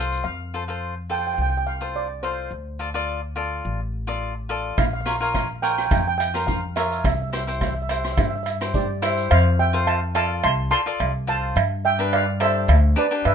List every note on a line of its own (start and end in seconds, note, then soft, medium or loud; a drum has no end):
0.00 0.21 C2 medium
0.00 0.25 F4 medium
0.00 0.25 A4 medium
0.00 0.25 C5 medium
0.12 closed hi-hat medium
0.24 1.34 F2 medium
0.24 0.77 F5 medium
0.54 0.63 F4 medium
0.54 0.63 A4 medium
0.54 0.63 C5 medium
0.68 0.93 F4 medium
0.68 0.94 A4 medium
0.68 0.94 C5 medium
1.10 1.53 F4 medium
1.10 1.53 A4 medium
1.10 1.53 C5 medium
1.10 1.18 G5 medium
1.19 1.26 G5 medium
1.27 1.33 G5 medium
1.34 2.47 C2 medium
1.34 1.40 G5 medium
1.42 1.49 G5 medium
1.50 1.56 G5 medium
1.57 1.63 G5 medium
1.67 1.93 F5 medium
1.81 2.06 F4 medium
1.81 2.07 A4 medium
1.81 2.07 C5 medium
1.96 2.24 D5 medium
2.23 2.51 F4 medium
2.23 2.52 A4 medium
2.23 3.04 C5 medium
2.23 2.52 C5 medium
2.51 3.60 D2 medium
2.79 2.89 F4 medium
2.79 2.89 A4 medium
2.79 2.89 D5 medium
2.94 3.20 F4 medium
2.94 3.20 A4 medium
2.94 3.20 D5 medium
3.36 3.79 F4 medium
3.36 3.80 A4 medium
3.36 3.80 D5 medium
3.65 4.74 A1 medium
4.07 4.33 F4 medium
4.07 4.33 A4 medium
4.07 4.34 D5 medium
4.49 4.78 F4 medium
4.49 4.78 A4 medium
4.49 4.78 D5 medium
4.78 5.87 A#1 medium
4.78 4.85 F5 medium
4.78 kick medium
4.78 closed hi-hat medium
4.78 cowbell medium
4.86 4.92 F5 medium
4.93 5.00 F5 medium
5.01 5.07 F5 medium
5.06 5.15 F4 medium
5.06 5.15 A#4 soft
5.06 5.16 C#5 medium
5.06 5.14 F5 medium
5.06 cross-stick medium
5.06 closed hi-hat medium
5.16 5.22 F5 medium
5.20 5.46 F4 medium
5.20 5.47 A#4 medium
5.20 5.47 C#5 medium
5.20 5.30 F5 medium
5.20 closed hi-hat medium
5.34 5.61 F5 medium
5.34 kick medium
5.34 cross-stick medium
5.34 closed hi-hat medium
5.34 cowbell medium
5.62 6.06 F4 medium
5.62 6.06 A#4 medium
5.62 6.07 C#5 medium
5.62 5.69 G5 medium
5.62 closed hi-hat medium
5.70 5.77 G5 medium
5.78 5.84 G5 medium
5.78 cross-stick medium
5.78 closed hi-hat medium
5.86 5.92 G5 medium
5.91 7.00 F2 medium
5.91 5.98 G5 medium
5.91 kick loud
5.91 closed hi-hat medium
5.91 cowbell medium
6.00 6.06 G5 medium
6.08 6.15 G5 medium
6.18 6.45 G5 loud
6.18 closed hi-hat medium
6.18 cowbell medium
6.34 6.60 F4 medium
6.34 6.60 A#4 medium
6.34 6.60 C5 medium
6.34 cross-stick medium
6.34 closed hi-hat medium
6.47 6.74 F5 medium
6.47 kick medium
6.47 closed hi-hat medium
6.76 7.04 F4 medium
6.76 7.05 A#4 soft
6.76 7.05 C#5 medium
6.76 6.82 E5 medium
6.76 cross-stick medium
6.76 closed hi-hat medium
6.76 cowbell medium
6.84 6.90 E5 medium
6.92 6.98 E5 medium
6.92 closed hi-hat soft
6.99 7.05 E5 soft
7.04 8.14 C2 medium
7.04 7.13 E5 medium
7.04 kick loud
7.04 closed hi-hat medium
7.04 cowbell medium
7.22 7.29 E5 soft
7.30 7.42 E4 medium
7.30 7.42 G4 medium
7.30 7.42 C5 medium
7.30 7.36 E5 soft
7.30 cross-stick medium
7.30 closed hi-hat medium
7.37 7.44 E5 medium
7.45 7.73 E4 medium
7.45 7.73 G4 medium
7.45 7.73 C5 medium
7.45 7.51 E5 soft
7.45 closed hi-hat medium
7.52 7.58 E5 soft
7.59 7.67 E5 soft
7.59 kick medium
7.59 cross-stick medium
7.59 closed hi-hat medium
7.59 cowbell medium
7.68 7.73 E5 soft
7.75 7.81 E5 soft
7.82 7.88 E5 medium
7.89 8.33 E4 medium
7.89 8.33 G4 medium
7.89 8.33 C5 medium
7.89 7.96 E5 soft
7.89 closed hi-hat medium
7.89 cowbell medium
7.97 8.04 E5 soft
8.04 8.11 E5 soft
8.04 cross-stick medium
8.04 closed hi-hat soft
8.12 8.18 E5 medium
8.17 9.27 G2 medium
8.17 8.27 E5 soft
8.17 kick medium
8.17 closed hi-hat medium
8.17 cowbell medium
8.28 8.35 E5 medium
8.36 8.42 E5 medium
8.43 8.48 E5 medium
8.43 closed hi-hat medium
8.43 cowbell medium
8.49 8.57 E5 medium
8.61 8.86 E4 medium
8.61 8.86 G4 soft
8.61 8.87 C5 medium
8.61 cross-stick medium
8.61 closed hi-hat medium
8.74 9.01 G4 medium
8.74 9.01 D5 medium
8.74 kick medium
8.74 closed hi-hat medium
9.02 9.31 E4 medium
9.02 9.31 G4 medium
9.02 9.31 C5 medium
9.02 9.29 C5 medium
9.02 9.32 E5 medium
9.02 cross-stick medium
9.02 closed hi-hat medium
9.02 cowbell medium
9.17 closed hi-hat medium
9.31 10.40 F2 medium
9.31 9.43 C5 medium
9.31 9.44 F5 loud
9.31 cowbell loud
9.59 9.85 E5 medium
9.59 9.88 G5 medium
9.73 9.99 F4 medium
9.73 9.99 A4 medium
9.73 9.99 C5 medium
9.87 10.13 F5 medium
9.87 10.15 A5 medium
9.87 cowbell medium
10.15 10.49 F4 medium
10.15 10.49 A4 medium
10.15 10.50 D5 medium
10.15 10.42 F5 medium
10.15 10.42 A5 loud
10.15 cowbell medium
10.44 10.69 C2 loud
10.44 10.70 A5 medium
10.44 10.70 C6 loud
10.44 cowbell medium
10.71 10.80 F4 medium
10.71 10.80 A4 medium
10.71 10.81 D5 medium
10.71 11.24 A5 medium
10.71 11.24 C6 loud
10.86 11.12 F4 medium
10.86 11.12 A4 medium
10.86 11.12 D5 medium
11.00 11.52 C2 medium
11.00 cowbell medium
11.27 11.56 F4 medium
11.27 11.56 A4 medium
11.27 11.56 C5 medium
11.27 11.81 F5 medium
11.27 11.86 A5 loud
11.56 12.65 G2 medium
11.56 cowbell medium
11.85 12.11 E5 medium
11.85 12.11 G5 loud
11.99 12.24 D4 medium
11.99 12.24 G4 medium
11.99 12.25 B4 medium
12.13 12.39 D5 medium
12.13 12.42 F5 loud
12.13 cowbell medium
12.40 12.74 D4 medium
12.40 12.75 G4 medium
12.40 12.75 A4 medium
12.40 12.93 C5 medium
12.40 13.00 E5 loud
12.40 cowbell medium
12.68 12.94 D2 loud
12.68 cowbell medium
12.96 13.05 D4 medium
12.96 13.06 G4 medium
12.96 13.06 B4 medium
12.96 13.24 B4 medium
12.96 13.24 D5 medium
13.11 13.35 D4 medium
13.11 13.35 G4 medium
13.11 13.35 B4 medium
13.25 13.35 G2 medium
13.25 13.35 B4 medium
13.25 13.35 E5 medium
13.25 cowbell medium